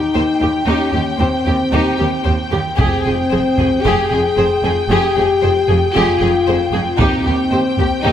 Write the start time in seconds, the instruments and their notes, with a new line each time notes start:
Already playing: french horn section D#4, violin section G5
0.14 cello section D#2, double bass section D#2, viola section G4, violin section C5
0.41 cello section D#2, double bass section D#2, violin section G4, viola section G4
0.65 cello section D#2, double bass section D#2, french horn section C#4, violin section D#4, viola section G4
0.93 cello section D#2, double bass section D#2, violin section G4, viola section G4
1.19 cello section D#2, double bass section D#2, french horn section C4, viola section G4, violin section C5
1.46 cello section D#2, double bass section D#2, violin section G4, viola section G4
1.72 cello section D#2, double bass section D#2, violin section D#4, viola section G4
1.98 cello section D#2, double bass section D#2, violin section G4, viola section G4
2.24 cello section D#2, double bass section D#2, viola section G4, violin section C5
2.51 cello section D#2, double bass section D#2, violin section G4, viola section G4
2.77 double bass section F1, cello section F2, french horn section C4, violin section G4 G5, viola section G#4, taiko
3.03 double bass section F1, cello section F2, violin section G#4, viola section G#4
3.31 double bass section F1, cello section F2, viola section G#4, violin section C5
3.58 double bass section F1, cello section F2, violin section G#4, viola section G#4, taiko
3.82 double bass section F1, cello section F2, violin section G4, french horn section G#4
3.86 viola section G#4
4.11 double bass section F1, cello section F2, viola section G#4, violin section G#4
4.37 double bass section F1, cello section F2, viola section G#4, violin section C5
4.64 double bass section F1, cello section F2, viola section G#4, violin section G#4
4.88 double bass section F1, cello section F2, french horn section G4, violin section G4, viola section G#4
5.16 double bass section F1, cello section F2, violin section G#4, viola section G#4
5.42 double bass section F1, cello section F2, viola section G#4, violin section C5
5.68 double bass section F1, cello section F2, violin section G#4, viola section G#4
5.92 double bass section F1, cello section F2, french horn section F4, violin section G4, viola section G#4
6.20 double bass section F1, cello section F2, violin section G#4, viola section G#4
6.47 double bass section F1, cello section F2, viola section G#4, violin section C5
6.72 double bass section F1, cello section F2, viola section G#4, violin section G#4
6.98 cello section D#2, double bass section D#2, french horn section C4, violin section D#4 G5, viola section G4, taiko
7.25 double bass section D#2, cello section D#2, viola section G4, violin section G4
7.51 double bass section D#2, cello section D#2, viola section G4, violin section C5
7.78 double bass section D#2, cello section D#2, violin section G4, viola section G4, taiko
8.03 cello section D#2, double bass section D#2, violin section D#4, french horn section D#4, viola section G4